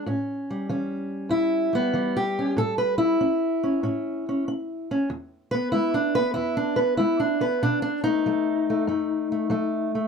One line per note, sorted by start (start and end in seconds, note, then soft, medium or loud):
0.06 0.65 A2 medium
0.06 0.70 C#4 medium
0.50 1.72 G3 soft
0.69 1.28 E3 medium
0.69 1.74 C#4 soft
1.29 1.89 E2 medium
1.29 1.73 E4 medium
1.73 1.94 G3 soft
1.73 2.16 B3 loud
1.93 2.53 E3 medium
1.93 3.20 G3 medium
2.17 2.58 G4 medium
2.39 2.56 C#4 medium
2.57 3.16 A2 medium
2.57 2.78 A4 loud
2.78 2.97 B4 medium
2.98 4.87 E4 medium
3.21 3.62 C#4 medium
3.63 3.82 C#4 medium
3.83 4.42 A2 medium
3.83 4.26 C#4 medium
4.29 4.47 C#4 soft
4.48 4.90 C#4 medium
4.91 5.08 C#4 medium
5.10 5.68 E2 medium
5.51 6.18 B3 soft
5.51 5.71 B4 loud
5.72 6.32 G#3 medium
5.72 5.93 E4 medium
5.94 6.15 D4 medium
6.15 6.78 B3 medium
6.15 6.33 B4 loud
6.34 6.95 E2 medium
6.34 6.56 E4 medium
6.57 6.78 D4 medium
6.76 7.40 B3 soft
6.76 6.97 B4 loud
6.97 7.58 G#3 medium
6.97 7.19 E4 medium
7.20 7.40 D4 medium
7.41 8.06 B3 soft
7.41 7.62 B4 medium
7.63 8.21 B2 medium
7.63 7.81 D4 medium
7.82 8.03 D4 medium
8.04 8.26 A3 medium
8.04 9.93 D#4 loud
8.26 8.84 F#3 medium
8.26 8.69 A3 medium
8.70 8.88 A3 soft
8.87 9.46 F#2 medium
8.87 9.31 A3 soft
9.32 9.50 A3 soft
9.50 10.08 F#3 medium
9.50 9.95 A3 medium
9.95 10.08 A3 medium